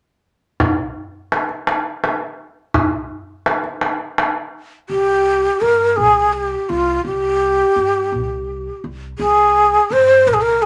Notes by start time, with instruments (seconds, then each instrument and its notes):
0.60 upright bass C2, tombak dum
1.32 tombak tek
1.49 tombak ka
1.67 tombak tek
2.04 tombak tek
2.74 upright bass C2, tombak dum
3.46 tombak tek
3.64 tombak ka
3.81 tombak tek
4.18 tombak tek
4.89 upright bass C2, ney G4
5.61 upright bass G2, ney A#4
5.97 upright bass C2, ney G#4
6.33 ney G4
6.69 upright bass C2, ney F4
7.05 upright bass C2, ney G4
7.76 upright bass G2
8.12 upright bass C2
8.84 upright bass C2
9.19 upright bass C2, ney G#4
9.90 upright bass G2, ney C5
10.27 upright bass C2, ney A#4
10.34 ney G#4
10.42 ney A#4
10.62 ney G#4